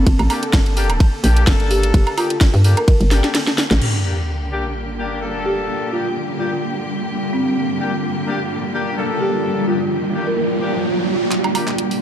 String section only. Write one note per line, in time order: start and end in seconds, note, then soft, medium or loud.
0.00 3.78 D3 medium
0.00 3.78 A#3 medium
0.00 3.78 A4 medium
3.82 11.28 D3 medium
3.82 11.28 A#3 medium
3.82 11.28 G4 medium
11.32 12.02 D3 medium
11.32 12.02 A#3 medium
11.32 12.02 G4 medium